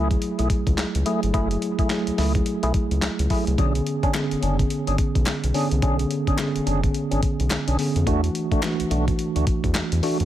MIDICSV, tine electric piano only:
0, 0, Header, 1, 2, 480
1, 0, Start_track
1, 0, Tempo, 560748
1, 1145, Time_signature, 4, 2, 24, 8
1, 8774, End_track
2, 0, Start_track
2, 0, Title_t, "Tine electric piano"
2, 0, Program_c, 0, 4
2, 0, Control_c, 0, 64, 127
2, 0, Note_on_c, 0, 54, 80
2, 0, Note_on_c, 0, 57, 73
2, 0, Note_on_c, 0, 64, 76
2, 0, Note_on_c, 0, 68, 91
2, 451, Note_off_c, 0, 54, 0
2, 452, Note_off_c, 0, 57, 0
2, 454, Note_off_c, 0, 64, 0
2, 455, Note_off_c, 0, 68, 0
2, 906, Note_on_c, 0, 54, 80
2, 909, Note_on_c, 0, 57, 73
2, 913, Note_on_c, 0, 64, 69
2, 916, Note_on_c, 0, 68, 87
2, 1102, Note_off_c, 0, 54, 0
2, 1104, Note_off_c, 0, 57, 0
2, 1106, Note_off_c, 0, 64, 0
2, 1107, Note_off_c, 0, 68, 0
2, 1143, Note_on_c, 0, 54, 81
2, 1147, Note_on_c, 0, 57, 83
2, 1151, Note_on_c, 0, 64, 80
2, 1154, Note_on_c, 0, 68, 93
2, 1538, Note_off_c, 0, 54, 0
2, 1540, Note_off_c, 0, 57, 0
2, 1541, Note_off_c, 0, 64, 0
2, 1543, Note_off_c, 0, 68, 0
2, 1624, Note_on_c, 0, 54, 79
2, 1628, Note_on_c, 0, 57, 73
2, 1631, Note_on_c, 0, 64, 76
2, 1634, Note_on_c, 0, 68, 89
2, 2371, Note_off_c, 0, 54, 0
2, 2372, Note_off_c, 0, 57, 0
2, 2374, Note_off_c, 0, 64, 0
2, 2376, Note_off_c, 0, 68, 0
2, 2825, Note_on_c, 0, 54, 72
2, 2828, Note_on_c, 0, 57, 72
2, 2832, Note_on_c, 0, 64, 72
2, 2835, Note_on_c, 0, 68, 85
2, 3022, Note_off_c, 0, 54, 0
2, 3024, Note_off_c, 0, 57, 0
2, 3025, Note_off_c, 0, 64, 0
2, 3027, Note_off_c, 0, 68, 0
2, 3066, Note_on_c, 0, 50, 86
2, 3068, Note_on_c, 0, 59, 77
2, 3072, Note_on_c, 0, 61, 76
2, 3074, Control_c, 0, 64, 0
2, 3076, Note_on_c, 0, 68, 94
2, 3238, Control_c, 0, 64, 127
2, 3459, Note_off_c, 0, 50, 0
2, 3460, Note_off_c, 0, 59, 0
2, 3462, Note_off_c, 0, 61, 0
2, 3464, Note_off_c, 0, 68, 0
2, 3544, Note_on_c, 0, 50, 80
2, 3547, Note_on_c, 0, 59, 74
2, 3550, Note_on_c, 0, 61, 71
2, 3554, Note_on_c, 0, 68, 91
2, 4290, Note_off_c, 0, 50, 0
2, 4292, Note_off_c, 0, 59, 0
2, 4293, Note_off_c, 0, 61, 0
2, 4295, Note_off_c, 0, 68, 0
2, 4745, Note_on_c, 0, 50, 83
2, 4748, Note_on_c, 0, 59, 75
2, 4751, Note_on_c, 0, 61, 73
2, 4755, Note_on_c, 0, 68, 86
2, 4942, Note_off_c, 0, 50, 0
2, 4943, Note_off_c, 0, 59, 0
2, 4945, Note_off_c, 0, 61, 0
2, 4947, Note_off_c, 0, 68, 0
2, 4982, Note_on_c, 0, 50, 85
2, 4985, Note_on_c, 0, 59, 73
2, 4989, Note_on_c, 0, 61, 81
2, 4993, Note_on_c, 0, 68, 94
2, 5377, Note_off_c, 0, 50, 0
2, 5379, Note_off_c, 0, 59, 0
2, 5380, Note_off_c, 0, 61, 0
2, 5382, Note_off_c, 0, 68, 0
2, 5462, Note_on_c, 0, 50, 85
2, 5465, Note_on_c, 0, 59, 67
2, 5469, Note_on_c, 0, 61, 73
2, 5473, Note_on_c, 0, 68, 89
2, 6209, Note_off_c, 0, 50, 0
2, 6211, Note_off_c, 0, 59, 0
2, 6213, Note_off_c, 0, 61, 0
2, 6215, Note_off_c, 0, 68, 0
2, 6663, Note_on_c, 0, 50, 80
2, 6666, Note_on_c, 0, 59, 73
2, 6669, Note_on_c, 0, 61, 78
2, 6673, Note_on_c, 0, 68, 90
2, 6861, Note_off_c, 0, 50, 0
2, 6862, Note_off_c, 0, 59, 0
2, 6864, Note_off_c, 0, 61, 0
2, 6866, Note_off_c, 0, 68, 0
2, 6902, Note_on_c, 0, 52, 85
2, 6906, Note_on_c, 0, 57, 81
2, 6910, Note_on_c, 0, 62, 75
2, 6912, Note_on_c, 0, 66, 95
2, 6916, Control_c, 0, 64, 0
2, 7048, Control_c, 0, 64, 127
2, 7297, Note_off_c, 0, 52, 0
2, 7299, Note_off_c, 0, 57, 0
2, 7301, Note_off_c, 0, 62, 0
2, 7302, Note_off_c, 0, 66, 0
2, 7382, Note_on_c, 0, 52, 82
2, 7386, Note_on_c, 0, 57, 73
2, 7389, Note_on_c, 0, 62, 71
2, 7393, Note_on_c, 0, 66, 94
2, 8130, Note_off_c, 0, 52, 0
2, 8131, Note_off_c, 0, 57, 0
2, 8133, Note_off_c, 0, 62, 0
2, 8135, Note_off_c, 0, 66, 0
2, 8583, Note_on_c, 0, 52, 81
2, 8587, Note_on_c, 0, 57, 69
2, 8590, Note_on_c, 0, 62, 78
2, 8593, Note_on_c, 0, 66, 86
2, 8774, Note_off_c, 0, 52, 0
2, 8774, Note_off_c, 0, 57, 0
2, 8774, Note_off_c, 0, 62, 0
2, 8774, Note_off_c, 0, 66, 0
2, 8774, End_track
0, 0, End_of_file